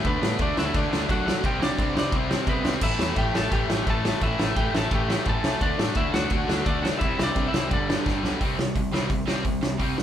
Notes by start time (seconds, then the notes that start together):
0.04 D2 D3 A3 B3 D4 B4, kick, ride
0.22 A2 D3 A3 D4, snare
0.39 D2 D3 A3 D4 D5, kick, ride
0.57 D2 D3 A3 D4 E4 E5, snare
0.74 D2 D3 A3 D4 D5, kick, ride
0.92 D2 D3 A3 D4, snare
1.09 B1 D3 A3 D4 F#4 F#5, kick, ride
1.26 D3 A3 D4, snare
1.43 C2 C3 G3 C4 G4 G5, kick, ride
1.59 C2 C3 G3 C4, snare
1.63 D4 D5
1.78 C2 C3 G3 C4, kick, ride
1.94 C2 C3 G3 C4, snare
1.98 D4 D5
2.12 C2 C3 G3 C4, kick, ride
2.17 C5
2.29 C3 G3 C4, snare
2.47 C2 C3 G3 B3 C4 B4, kick, ride
2.63 C2 C3 G3 C4, snare
2.81 A1 A2 E3 A3 E4 E5, kick, crash
2.99 E2 A2 E3 A3, snare
3.15 A1 A2 E3 A3 G4 G5, kick, ride
3.33 A1 A2 E3 A3 A4 A5, snare
3.51 A1 A2 E3 A3 G4 G5, kick, ride
3.68 A1 A2 E3 A3, snare
3.87 A1 A2 E3 A3 A4 A5, kick, ride
4.04 A2 E3 A3, snare
4.21 A1 A2 E3 A3 E5, kick, ride
4.25 E4
4.38 A1 A2 E3 A3, snare
4.55 A1 A2 E3 A3 G4 G5, kick, ride
4.73 A1 A2 E3 A3 A5, snare
4.77 A4
4.90 A1 A2 E3 A3, kick, ride
4.94 G4 G5
5.09 A2 E3 A3, snare
5.25 A1 A2 E3 A3 A4, kick, ride
5.29 A5
5.43 C2 A2 E3 A3, snare
5.61 D2 D3 A3 D4 D5, kick, ride
5.78 A2 D3 A3 D4, snare
5.95 D2 D3 A3 D4 E4 E5, kick, ride
6.13 D2 D3 A3 D4 F#4 F#5, snare
6.30 D2 D3 A3 D4, kick, ride
6.48 D2 D3 A3 D4, snare
6.66 D2 D3 A3 D4 D5, kick, ride
6.83 D3 A3 D4 F#4 F#5, snare
6.99 C2 C3 G3 C4 E4 E5, kick, ride
7.18 C2 C3 G3 C4, snare
7.23 D4 D5
7.35 C2 C3 G3 C4, kick, ride
7.48 E4 E5
7.52 C2 C3 G3 C4, snare
7.70 G1 G2 D3 G3 D4 D5, kick, ride
7.88 G2 D3 G3, snare
8.06 G1 G2 D3 G3, kick, snare
8.23 B1 G2 D3 G3, snare
8.41 C2 C3 G3 C4, kick, open hi-hat
8.58 C3 G3, snare
8.75 C2 C3 G3, kick, open hi-hat
8.92 C2 C3 G3 C4, snare
9.10 C2 C3 G3, kick, open hi-hat
9.27 C2 C3 G3 C4, snare
9.44 C2 C3 G3, kick, open hi-hat
9.62 C2 C3 G3, snare
9.79 C2 C3 G3 C4, kick, open hi-hat
9.97 C3 G3, snare